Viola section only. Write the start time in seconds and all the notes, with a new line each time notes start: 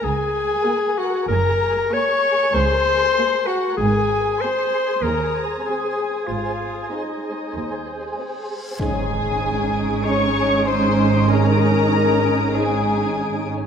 0.67 A#3 G#4
1.91 A#3 G#4
3.18 A#3 G#4
4.44 C4 G#4
5.68 C4 G#4
6.93 C4 G#4
8.19 C4 G#4
8.81 C#4 D#4